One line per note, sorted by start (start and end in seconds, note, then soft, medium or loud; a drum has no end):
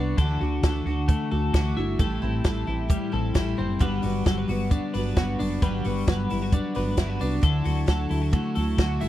0.00 0.14 C2 medium
0.00 0.18 G3 medium
0.00 0.19 B3 soft
0.00 0.18 D4 soft
0.00 0.23 D4 medium
0.00 0.18 F#4 medium
0.00 0.22 F#4 medium
0.00 0.17 B4 medium
0.17 0.37 D2 medium
0.17 1.99 D3 medium
0.17 0.41 D3 medium
0.17 0.41 E3 medium
0.17 0.41 A3 medium
0.17 0.42 D4 medium
0.17 0.40 F#4 medium
0.17 0.63 A4 medium
0.17 kick loud
0.17 closed hi-hat medium
0.41 0.60 D2 medium
0.41 0.65 A3 soft
0.41 0.65 D4 soft
0.41 0.85 F#4 medium
0.41 0.64 F#4 medium
0.63 0.82 D2 medium
0.63 0.87 D3 medium
0.63 0.87 E3 medium
0.63 0.87 A3 medium
0.63 0.87 D4 medium
0.63 0.85 F#4 medium
0.63 1.31 A4 medium
0.63 kick loud
0.63 snare loud
0.63 closed hi-hat medium
0.85 1.14 D2 medium
0.85 1.10 D4 medium
0.85 1.52 F#4 soft
0.85 1.09 F#4 medium
0.90 1.09 A3 soft
1.08 1.32 E3 medium
1.08 2.04 A3 medium
1.08 1.32 A3 medium
1.08 1.32 D4 medium
1.08 kick loud
1.08 closed hi-hat medium
1.12 1.30 F#4 medium
1.31 1.50 D2 medium
1.31 1.55 A3 soft
1.31 1.55 D4 soft
1.31 1.54 F#4 medium
1.31 1.99 A4 medium
1.54 1.73 D2 medium
1.54 1.77 D3 medium
1.54 1.77 E3 medium
1.54 1.78 A3 medium
1.54 1.77 D4 medium
1.54 2.04 F#4 medium
1.54 1.76 F#4 medium
1.54 kick medium
1.54 snare medium
1.54 closed hi-hat medium
1.77 1.95 G1 medium
1.77 2.00 A3 soft
1.77 2.00 D4 soft
1.77 2.04 E4 medium
1.77 2.00 F#4 medium
1.99 2.18 A1 medium
1.99 2.22 A2 medium
1.99 3.81 A2 medium
1.99 2.22 E3 medium
1.99 2.23 G3 medium
1.99 2.22 C4 medium
1.99 2.21 E4 medium
1.99 2.44 A4 medium
1.99 kick loud
1.99 closed hi-hat medium
2.22 2.41 A1 medium
2.22 2.45 G3 soft
2.22 2.45 C4 soft
2.22 2.45 E4 medium
2.22 2.66 E4 medium
2.44 2.64 A1 medium
2.44 2.67 A2 medium
2.44 2.68 E3 medium
2.44 2.68 G3 medium
2.44 2.67 C4 medium
2.44 2.66 E4 medium
2.44 3.12 A4 medium
2.44 kick loud
2.44 snare loud
2.44 closed hi-hat medium
2.67 2.95 A1 medium
2.67 2.89 G3 soft
2.67 2.90 C4 soft
2.67 2.90 E4 medium
2.67 3.35 E4 medium
2.89 3.12 E3 medium
2.89 3.13 G3 medium
2.89 3.81 G3 medium
2.89 3.12 C4 medium
2.89 3.11 E4 medium
2.89 kick loud
2.89 closed hi-hat medium
3.12 3.32 A1 medium
3.12 3.34 G3 soft
3.12 3.35 C4 medium
3.12 3.35 E4 medium
3.12 3.81 A4 soft
3.34 3.54 A1 medium
3.34 3.58 A2 medium
3.34 3.58 E3 medium
3.34 3.58 G3 medium
3.34 3.58 C4 medium
3.34 3.86 E4 medium
3.34 3.56 E4 medium
3.34 kick loud
3.34 snare loud
3.34 closed hi-hat medium
3.57 3.77 F#1 medium
3.57 3.80 G3 soft
3.57 3.85 C4 medium
3.57 3.81 C4 medium
3.57 3.80 E4 medium
3.79 3.99 G1 medium
3.79 4.03 G2 medium
3.79 4.03 D3 medium
3.79 4.03 F#3 medium
3.79 5.61 G3 medium
3.79 4.03 B3 medium
3.79 4.01 D4 medium
3.79 4.26 B4 medium
3.79 kick loud
3.79 closed hi-hat medium
4.02 4.22 G1 medium
4.02 4.25 F#3 soft
4.02 4.25 B3 soft
4.02 4.25 D4 medium
4.02 4.49 F#4 medium
4.02 open hi-hat medium
4.25 4.45 G1 medium
4.25 4.48 G2 medium
4.25 4.49 D3 medium
4.25 4.49 F#3 medium
4.25 4.48 B3 medium
4.25 4.47 D4 medium
4.25 4.38 A4 medium
4.25 kick loud
4.25 snare medium
4.25 closed hi-hat medium
4.38 4.92 B4 soft
4.48 4.76 G1 medium
4.48 4.71 F#3 soft
4.48 4.71 B3 medium
4.48 4.71 D4 medium
4.48 5.16 F#4 soft
4.48 open hi-hat medium
4.71 4.94 D3 medium
4.71 4.94 F#3 medium
4.71 4.94 B3 medium
4.71 5.39 D4 medium
4.71 4.93 D4 medium
4.71 kick loud
4.71 closed hi-hat medium
4.94 5.13 G1 medium
4.94 5.16 F#3 medium
4.94 5.17 B3 medium
4.94 5.17 D4 medium
4.94 5.62 B4 medium
4.94 open hi-hat medium
5.16 5.35 G1 medium
5.16 5.39 G2 medium
5.16 5.40 D3 medium
5.16 5.40 F#3 medium
5.16 5.40 B3 medium
5.16 5.38 D4 medium
5.16 5.85 F#4 medium
5.16 kick loud
5.16 snare loud
5.16 closed hi-hat medium
5.39 5.58 F#1 medium
5.39 5.62 F#3 soft
5.39 5.63 B3 medium
5.39 5.62 D4 medium
5.39 6.53 D4 medium
5.39 open hi-hat medium
5.62 5.81 G1 medium
5.62 5.85 G2 medium
5.62 5.85 D3 medium
5.62 5.86 F#3 medium
5.62 7.43 G3 medium
5.62 5.85 B3 medium
5.62 5.83 D4 medium
5.62 6.07 B4 medium
5.62 kick loud
5.62 closed hi-hat medium
5.84 6.04 G1 medium
5.84 6.07 F#3 soft
5.84 6.08 B3 medium
5.84 6.07 D4 medium
5.84 6.31 F#4 medium
5.84 open hi-hat medium
6.07 6.26 G1 medium
6.07 6.30 G2 medium
6.07 6.30 D3 medium
6.07 6.30 F#3 medium
6.07 6.30 B3 medium
6.07 6.28 D4 medium
6.07 6.75 B4 medium
6.07 kick loud
6.07 snare loud
6.07 closed hi-hat medium
6.29 6.58 G1 medium
6.29 6.52 F#3 soft
6.29 6.53 B3 soft
6.29 6.52 D4 medium
6.29 6.42 E4 medium
6.29 open hi-hat medium
6.42 6.98 F#4 soft
6.52 6.75 D3 medium
6.52 6.76 F#3 medium
6.52 6.75 B3 medium
6.52 7.21 D4 medium
6.52 6.73 D4 medium
6.52 kick loud
6.52 closed hi-hat medium
6.75 6.94 G1 loud
6.75 6.97 F#3 soft
6.75 6.97 B3 medium
6.75 6.98 D4 medium
6.75 7.43 B4 medium
6.75 open hi-hat medium
6.97 7.16 G1 medium
6.97 7.20 G2 medium
6.97 7.20 D3 medium
6.97 7.21 F#3 medium
6.97 7.20 B3 medium
6.97 7.18 D4 medium
6.97 7.10 E4 soft
6.97 kick loud
6.97 snare loud
6.97 closed hi-hat medium
7.10 7.48 F#4 medium
7.19 7.39 C2 medium
7.19 7.41 F#3 soft
7.19 7.43 B3 medium
7.19 7.42 D4 medium
7.19 7.48 D4 medium
7.19 open hi-hat medium
7.42 7.62 D2 medium
7.42 7.65 D3 medium
7.42 9.09 D3 medium
7.42 7.65 F#3 medium
7.42 7.65 A3 medium
7.42 7.63 E4 medium
7.42 7.88 A4 medium
7.42 kick loud
7.42 closed hi-hat medium
7.64 7.84 D2 medium
7.64 7.86 F#3 soft
7.64 7.87 A3 soft
7.64 7.87 E4 medium
7.64 8.10 F#4 medium
7.64 open hi-hat medium
7.86 8.07 D2 loud
7.86 8.10 D3 medium
7.86 8.10 F#3 medium
7.86 8.10 A3 medium
7.86 8.08 E4 medium
7.86 8.55 A4 medium
7.86 kick loud
7.86 snare loud
7.86 closed hi-hat medium
8.09 8.38 D2 medium
8.09 8.32 F#3 soft
8.09 8.33 A3 medium
8.09 8.33 E4 medium
8.09 8.22 E4 soft
8.09 open hi-hat medium
8.22 8.77 F#4 soft
8.31 8.55 D3 medium
8.31 8.56 F#3 medium
8.31 9.09 A3 medium
8.31 8.56 A3 medium
8.31 8.54 E4 medium
8.31 kick loud
8.31 closed hi-hat medium
8.55 8.75 D2 medium
8.55 8.78 F#3 soft
8.55 8.79 A3 medium
8.55 8.79 E4 medium
8.55 9.09 A4 medium
8.55 open hi-hat medium
8.78 8.97 D2 loud
8.78 9.01 D3 medium
8.78 9.02 F#3 medium
8.78 9.01 A3 medium
8.78 8.99 E4 medium
8.78 9.09 F#4 medium
8.78 kick loud
8.78 snare medium
8.78 closed hi-hat medium
9.00 9.09 G1 medium
9.00 9.09 F#3 soft
9.00 9.09 A3 medium
9.00 9.09 E4 medium
9.00 9.09 E4 soft
9.00 open hi-hat medium